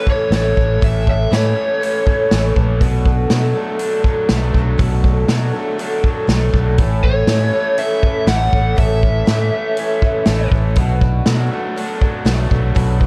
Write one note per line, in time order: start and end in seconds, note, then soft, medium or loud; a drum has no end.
0.00 0.30 A3 medium
0.00 1.06 C#4 medium
0.05 0.55 E3 medium
0.05 0.31 A3 soft
0.05 0.31 C#4 soft
0.05 0.31 A4 soft
0.05 kick medium
0.10 0.32 C#5 medium
0.31 0.53 A1 medium
0.31 0.56 A2 medium
0.31 0.56 E3 medium
0.31 0.57 A3 medium
0.31 0.56 C#4 medium
0.31 0.56 A4 medium
0.31 snare medium
0.31 open hi-hat soft
0.35 0.85 C#5 medium
0.56 0.78 A1 medium
0.56 1.30 E3 medium
0.56 0.80 A3 soft
0.56 0.81 C#4 soft
0.56 0.81 A4 soft
0.56 kick medium
0.81 1.25 A1 medium
0.81 1.06 A2 medium
0.81 1.06 E3 medium
0.81 1.06 A3 medium
0.81 1.06 C#4 medium
0.81 1.05 A4 medium
0.81 1.08 E5 medium
0.81 kick loud
0.81 open hi-hat soft
1.06 1.30 A3 soft
1.06 1.30 C#4 soft
1.06 1.31 A4 soft
1.06 kick medium
1.10 1.32 E5 medium
1.30 1.55 A2 medium
1.30 1.53 A2 medium
1.30 1.56 E3 medium
1.30 1.56 A3 medium
1.30 1.55 C#4 medium
1.30 1.54 A4 medium
1.30 snare medium
1.30 open hi-hat soft
1.34 2.53 C#5 medium
1.55 1.81 A3 soft
1.55 1.81 C#4 soft
1.55 1.80 A4 medium
1.81 2.06 E3 medium
1.81 2.06 A3 medium
1.81 2.06 C#4 medium
1.81 2.05 A4 medium
1.81 open hi-hat soft
2.05 2.55 E3 medium
2.05 2.31 A3 soft
2.05 2.31 C#4 medium
2.05 2.31 A4 medium
2.05 kick medium
2.31 2.53 A1 medium
2.31 2.56 A2 medium
2.31 2.56 E3 medium
2.31 2.56 A3 medium
2.31 2.56 C#4 medium
2.31 2.55 A4 medium
2.31 snare medium
2.31 open hi-hat soft
2.56 2.81 A#1 medium
2.56 2.81 E3 medium
2.56 2.81 A3 soft
2.56 2.81 C#4 medium
2.56 2.81 A4 soft
2.56 kick medium
2.81 3.24 B1 medium
2.81 3.06 B2 medium
2.81 3.06 F#3 medium
2.81 3.06 A3 medium
2.81 3.06 D4 medium
2.81 3.04 A4 medium
2.81 kick loud
2.81 open hi-hat soft
3.05 3.31 A3 soft
3.05 3.31 D4 medium
3.05 3.30 A4 medium
3.05 kick medium
3.30 3.52 B2 medium
3.30 3.56 B2 medium
3.30 3.56 F#3 medium
3.30 3.56 A3 medium
3.30 3.56 D4 medium
3.30 3.54 A4 medium
3.30 snare medium
3.30 open hi-hat soft
3.55 3.79 A3 soft
3.55 3.80 D4 medium
3.55 3.80 A4 medium
3.79 4.05 F#3 medium
3.79 4.05 A3 medium
3.79 4.04 D4 medium
3.79 4.03 A4 medium
3.79 open hi-hat soft
4.04 4.53 F#3 medium
4.04 4.29 A3 soft
4.04 4.29 D4 soft
4.04 4.29 A4 soft
4.04 kick medium
4.29 4.52 B1 medium
4.29 4.55 B2 medium
4.29 4.55 F#3 medium
4.29 4.54 A3 medium
4.29 4.53 D4 medium
4.29 4.52 A4 medium
4.29 snare loud
4.29 open hi-hat soft
4.53 4.76 B1 medium
4.53 5.28 F#3 medium
4.53 4.77 A3 soft
4.53 4.79 D4 soft
4.53 4.79 A4 soft
4.53 kick medium
4.78 5.23 B1 medium
4.78 5.04 B2 medium
4.78 5.04 F#3 medium
4.78 5.04 A3 medium
4.78 5.03 D4 medium
4.78 5.02 A4 medium
4.78 kick loud
4.78 open hi-hat soft
5.04 5.28 A3 soft
5.04 5.28 D4 soft
5.04 5.28 A4 medium
5.04 kick medium
5.28 5.54 B2 medium
5.28 5.51 B2 medium
5.28 5.54 F#3 medium
5.28 5.53 A3 medium
5.28 5.52 D4 medium
5.28 5.51 A4 medium
5.28 snare medium
5.28 open hi-hat soft
5.52 5.77 A3 soft
5.52 5.78 D4 soft
5.52 5.78 A4 medium
5.78 6.04 F#3 medium
5.78 6.04 A3 medium
5.78 6.04 D4 medium
5.78 6.02 A4 medium
5.78 open hi-hat soft
6.03 6.53 F#3 medium
6.03 6.28 A3 soft
6.03 6.27 D4 soft
6.03 6.28 A4 soft
6.03 kick medium
6.27 6.50 B1 medium
6.27 6.53 B2 medium
6.27 6.54 F#3 medium
6.27 6.54 A3 medium
6.27 6.54 D4 medium
6.27 6.53 A4 medium
6.27 snare medium
6.27 open hi-hat soft
6.53 6.78 B1 medium
6.53 6.79 F#3 medium
6.53 6.78 A3 soft
6.53 6.79 D4 soft
6.53 6.78 A4 soft
6.53 kick medium
6.78 7.22 A1 medium
6.78 7.04 A2 medium
6.78 7.04 E3 medium
6.78 7.04 A3 medium
6.78 7.03 C#4 medium
6.78 7.02 A4 medium
6.78 kick loud
6.78 open hi-hat soft
7.04 7.29 A3 soft
7.04 7.29 C#4 soft
7.04 7.29 A4 soft
7.04 7.81 C#5 medium
7.04 kick medium
7.27 7.50 A2 medium
7.27 7.54 A2 medium
7.27 7.54 E3 medium
7.27 7.54 A3 medium
7.27 7.53 C#4 medium
7.27 7.52 A4 medium
7.27 snare medium
7.27 open hi-hat soft
7.53 7.77 A3 soft
7.53 7.77 C#4 soft
7.53 7.78 A4 soft
7.77 8.03 E3 medium
7.77 8.03 A3 medium
7.77 8.02 C#4 medium
7.77 8.01 A4 medium
7.77 8.28 E5 medium
7.77 open hi-hat soft
8.02 8.53 E3 medium
8.02 8.27 A3 soft
8.02 8.26 C#4 soft
8.02 8.27 A4 soft
8.02 kick medium
8.27 8.49 A1 medium
8.27 8.53 A2 medium
8.27 8.53 E3 medium
8.27 8.53 A3 medium
8.27 8.52 C#4 medium
8.27 8.51 A4 medium
8.27 8.78 F#5 medium
8.27 snare loud
8.27 open hi-hat soft
8.52 8.75 A1 medium
8.52 9.27 E3 medium
8.52 8.76 A3 soft
8.52 8.76 C#4 soft
8.52 8.77 A4 soft
8.52 kick medium
8.76 9.21 A1 medium
8.76 9.02 A2 medium
8.76 9.02 E3 medium
8.76 9.02 A3 medium
8.76 9.01 C#4 medium
8.76 9.01 A4 medium
8.76 10.48 E5 medium
8.76 kick medium
8.76 open hi-hat soft
9.02 9.25 A3 soft
9.02 9.25 C#4 soft
9.02 9.26 A4 soft
9.02 kick medium
9.26 9.52 A2 medium
9.26 9.49 A2 medium
9.26 9.52 E3 medium
9.26 9.52 A3 medium
9.26 9.52 C#4 medium
9.26 9.51 A4 medium
9.26 snare medium
9.26 open hi-hat soft
9.52 9.76 A3 soft
9.52 9.77 C#4 soft
9.52 9.77 A4 medium
9.77 10.02 E3 medium
9.77 10.02 A3 medium
9.77 10.02 C#4 medium
9.77 10.01 A4 medium
9.77 open hi-hat soft
10.01 10.51 E3 medium
10.01 10.26 C#4 soft
10.01 10.26 A4 medium
10.01 kick medium
10.26 10.49 A1 medium
10.26 10.52 A2 medium
10.26 10.52 E3 medium
10.26 10.52 A3 medium
10.26 10.51 C#4 medium
10.26 10.50 A4 medium
10.26 snare loud
10.26 open hi-hat soft
10.51 10.76 A1 medium
10.51 10.77 E3 medium
10.51 10.76 A3 soft
10.51 10.77 C#4 soft
10.51 10.76 A4 medium
10.51 kick medium
10.75 11.20 B1 medium
10.75 11.02 B2 medium
10.75 11.02 F#3 medium
10.75 11.02 A3 medium
10.75 11.01 D4 medium
10.75 11.00 F#4 medium
10.75 kick medium
10.75 open hi-hat soft
11.01 11.27 A3 soft
11.01 11.27 D4 soft
11.01 11.26 F#4 medium
11.01 kick medium
11.26 11.48 B2 medium
11.26 11.52 B2 medium
11.26 11.52 F#3 medium
11.26 11.52 A3 medium
11.26 11.51 D4 medium
11.26 11.50 F#4 medium
11.26 snare loud
11.26 open hi-hat soft
11.51 11.76 A3 soft
11.51 11.77 D4 medium
11.51 11.76 F#4 medium
11.76 12.01 F#3 medium
11.76 12.01 A3 medium
11.76 12.01 D4 medium
11.76 12.00 F#4 medium
11.76 open hi-hat soft
12.01 12.50 F#3 medium
12.01 12.24 A3 soft
12.01 12.25 D4 medium
12.01 12.25 F#4 medium
12.01 kick medium
12.25 12.47 B1 medium
12.25 12.50 B2 medium
12.25 12.50 F#3 medium
12.25 12.50 A3 medium
12.25 12.50 D4 medium
12.25 12.48 F#4 medium
12.25 snare loud
12.25 open hi-hat soft
12.50 12.72 B1 medium
12.50 13.07 F#3 medium
12.50 12.74 A3 soft
12.50 12.75 D4 medium
12.50 12.75 F#4 soft
12.50 kick medium
12.75 13.07 B1 medium
12.75 13.00 B2 medium
12.75 13.00 F#3 medium
12.75 13.00 A3 medium
12.75 12.99 D4 medium
12.75 12.98 F#4 medium
12.75 kick medium
12.75 open hi-hat soft
12.99 13.07 A3 soft
12.99 13.07 D4 soft
12.99 13.07 F#4 medium
12.99 kick medium